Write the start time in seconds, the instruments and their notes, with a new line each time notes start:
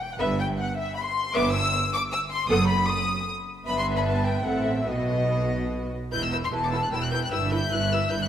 0.01 violin section G5
0.13 violin section F#5
0.19 double bass section G1, cello section G2, viola section B3 B4, violin section E5
0.39 violin section G5
0.58 violin section F#5
0.77 violin section E5
0.96 violin section B5
1.05 violin section C6
1.34 double bass section G1, cello section G2, viola section B3 B4, violin section E5 D6
1.54 violin section E6
1.94 violin section D6
2.12 violin section E6
2.31 violin section C6
2.49 double bass section F#1, cello section F#2, viola section B3 A4, violin section F#5 D#6
2.69 violin section B5
2.88 violin section D#6
3.66 double bass section G1, cello section G2, viola section B3 B4, violin section E5 B5
3.77 violin section C6
3.96 violin section B5
4.05 violin section A5
4.25 violin section G5
4.44 double bass section A1, cello section A2, viola section C4 A4, violin section E5 F#5
4.66 violin section E5
4.86 double bass section B1, cello section B2, viola section B3 F#4, violin section B4 D#5
6.12 double bass section E1, cello section E2, viola section E4 B4, violin section G6
6.23 violin section E6
6.32 viola section E4 B4, violin section E6
6.44 violin section C6
6.53 double bass section E1, cello section E2, viola section E4 B4, violin section A5
6.64 violin section D6
6.72 viola section E4 B4, violin section E6
6.84 violin section F#6
6.92 double bass section E1, cello section E2, viola section E4 B4, violin section G5 E6
7.03 violin section F#6
7.12 viola section E4 B4, violin section G6
7.24 violin section F#6
7.32 double bass section G1, cello section G2, viola section E4 B4, violin section E5 E6
7.52 viola section E4 B4, violin section G6
7.72 double bass section G1, cello section G2, viola section E4 B4, violin section F#6
7.92 viola section E4 B4, violin section E6
8.10 double bass section G1, cello section G2, viola section E4 B4, violin section G6
8.22 violin section F#6